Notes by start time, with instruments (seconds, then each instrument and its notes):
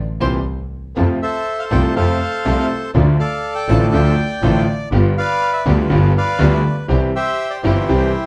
0.20 double bass C2, grand piano A#2 C3 E3, string section C4 E4 G4, violin C5
0.96 double bass F2, grand piano F2 C3 F3 A3 F4, string section C4 F4 A4
1.22 bandoneon A4 C5 E5
1.59 bandoneon F5
1.71 double bass C2, grand piano C2 C3 F3 A3 F4, string section C4 F4 A4, bandoneon G5
1.96 double bass F2, grand piano F2 C3 F3 A3 F4, string section C4 F4 A4, bandoneon A4 C5 F5
2.45 grand piano C2 C3 F3 A3 F4, double bass C2, string section C4 F4 A4
2.94 double bass D2, grand piano D2 D3 F3 A3 F4, string section D4 F4 A4
3.19 bandoneon A4 D5 F5
3.55 bandoneon G5
3.68 double bass A1, grand piano A1 A2 D3 F3 A3 F4, string section D4 F4 A4, bandoneon A5
3.93 double bass D2, grand piano D2 D3 F3 A3 F4, string section D4 F4 A4, bandoneon D5 G5
4.42 double bass A1, grand piano A1 A2 D3 F3 A3 F4, string section D4 F4 A4
4.92 double bass G1, grand piano G1 G2 D3 G3 B3 F4, string section B3 F4 G4
5.18 bandoneon B4 D5 F5
5.53 bandoneon E5
5.66 double bass D2, grand piano D2 D3 G3 B3 F4, string section B3 F4 G4, bandoneon D5
5.89 grand piano G1 G2 D3 G3 B3 F4, double bass G1, string section B3 F4 G4
6.18 bandoneon B4 D5 F5
6.39 grand piano D2 D3 G3 B3 F4, double bass D2, string section B3 F4 G4
6.54 bandoneon E5
6.66 bandoneon D5
6.88 grand piano C2 C3 E3 G3 C4 G4, double bass C2, string section C4 E4 G4
7.16 bandoneon G4 C5 E5
7.50 bandoneon D5
7.63 double bass G1, grand piano G1 G2 E3 G3 C4 G4, string section C4 E4 G4, bandoneon E4 G4 C5
7.88 double bass C2, grand piano C2 C3 E3 G3 C4 G4, string section C4 E4 G4